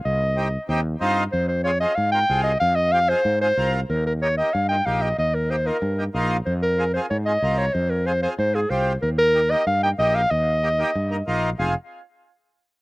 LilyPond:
<<
  \new Staff \with { instrumentName = "Clarinet" } { \time 4/4 \key f \minor \tempo 4 = 187 ees''2 r2 | c''8 c''8 des''8 ees''8 f''8 g''4 ees''8 | f''8 ees''8 f''8 c''4 c''4 r8 | bes'8 bes'8 des''8 ees''8 f''8 g''8 f''8 ees''8 |
ees''8 bes'8 c''8 bes'4 r4. | c''8 bes'4 c''8 des''8 ees''4 des''8 | c''8 bes'8 c''8 c''8 c''8 aes'8 c''8. r16 | bes'8 bes'4 ees''8 f''8 g''8 ees''8 f''8 |
ees''2. r4 | f''8 r2. r8 | }
  \new Staff \with { instrumentName = "Accordion" } { \time 4/4 \key f \minor r4 <c' ees' g'>8 r8 <c' ees' g'>8 r8 <c' ees' f'>8 r8 | r4 <c' f' aes'>8 <c' f' aes'>8 r8 <c' f' bes'>8 <c' f' aes'>8 r8 | r4 <c' f' g'>8 <c' f' aes'>8 r8 <c' f' aes'>8 <c' f' bes'>8 r8 | r4 <bes ees' g'>8 <bes ees' g'>8 r8 <bes ees' f'>8 <bes ees' g'>8 r8 |
r4 <bes ees' g'>8 <bes ees' f'>8 r8 <bes ees' g'>8 <bes ees' f'>8 r8 | r4 <c' f' aes'>8 <c' f' aes'>8 r8 <c' f' aes'>8 <c' f' bes'>8 r8 | r4 <c' f' aes'>8 <c' f' aes'>8 r8 <c' f' aes'>8 <c' f' g'>8 r8 | r4 <bes ees' g'>8 <bes ees' g'>8 r8 <bes ees' g'>8 <bes ees' g'>8 r8 |
r4 <bes ees' g'>8 <bes ees' g'>8 r8 <bes ees' bes'>8 <bes ees' f'>8 r8 | <c' f' aes'>8 r2. r8 | }
  \new Staff \with { instrumentName = "Fretless electric bass" } { \clef bass \time 4/4 \key f \minor c,2 ees,4 g,4 | f,2 aes,4 c,4 | f,2 aes,4 c,4 | ees,2 g,4 bes,,4 |
ees,2 g,4 bes,,4 | f,2 aes,4 c,4 | f,2 aes,4 c,4 | ees,2 g,4 bes,,4 |
ees,2 g,4 bes,,4 | f,,8 r2. r8 | }
>>